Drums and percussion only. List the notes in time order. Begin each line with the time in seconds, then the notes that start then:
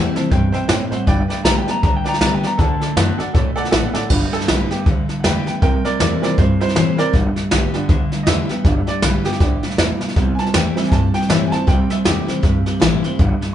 0.16 snare
0.31 kick, snare
0.54 snare
0.69 snare, hi-hat pedal
0.92 snare
1.07 kick, snare
1.30 snare
1.45 snare, hi-hat pedal
1.68 snare
1.83 kick, snare
2.06 snare
2.14 snare
2.21 snare, hi-hat pedal
2.43 snare
2.59 kick, snare
2.81 snare
2.97 snare, hi-hat pedal
3.20 snare
3.34 kick, snare
3.57 snare
3.65 snare
3.72 snare, hi-hat pedal
3.94 snare
4.10 kick, snare, crash
4.33 snare
4.41 snare
4.48 snare, hi-hat pedal
4.71 snare
4.86 kick, snare
5.09 snare
5.24 snare, hi-hat pedal
5.47 snare
5.62 kick, snare
5.85 snare
6.00 snare, hi-hat pedal
6.23 snare
6.38 kick, snare
6.61 snare
6.68 snare
6.76 snare, hi-hat pedal
6.98 snare
7.14 kick, snare
7.36 snare
7.51 snare, hi-hat pedal
7.74 snare
7.89 kick, snare
8.12 snare
8.27 snare, hi-hat pedal
8.49 snare
8.65 kick, snare
8.87 snare
9.02 snare, hi-hat pedal
9.25 snare
9.32 snare
9.40 kick, snare
9.63 snare
9.71 snare
9.78 snare, hi-hat pedal
10.01 snare
10.08 snare
10.16 kick, snare
10.39 snare
10.46 snare
10.54 snare, hi-hat pedal
10.77 snare
10.84 snare
10.92 kick, snare
11.14 snare
11.22 snare
11.30 snare, hi-hat pedal
11.52 snare
11.68 kick, snare
11.90 snare
12.05 snare, hi-hat pedal
12.28 snare
12.43 kick, snare
12.66 snare
12.82 snare, hi-hat pedal
13.04 snare
13.19 kick, snare
13.42 snare